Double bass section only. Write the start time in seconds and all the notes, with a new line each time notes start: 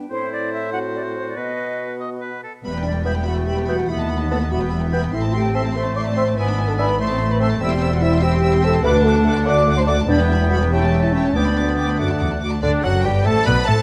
2.65 E1
3.90 D#2
4.52 E1
5.14 A1
6.37 G#1
7.00 A1
7.62 E1
8.85 D2
10.09 E1
11.35 D2
12.63 D2
12.84 F#1
13.05 G1
13.26 A1
13.46 B1
13.68 A1